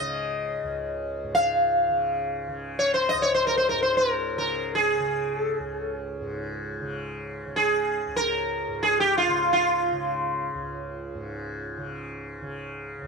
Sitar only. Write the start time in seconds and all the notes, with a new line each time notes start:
Already playing: D#5
1.35 F5
2.79 C#5
2.94 C5
3.09 D#5
3.22 C#5
3.34 C5
3.47 A#4
3.57 C5
3.69 A#4
3.83 C5
3.97 A#4
4.38 A#4
4.75 G#4
5.40 A4
5.58 G#4
5.77 A4
5.95 G#4
7.56 G#4
8.16 A#4
8.83 G#4
9.00 G4
9.18 F4
9.53 F4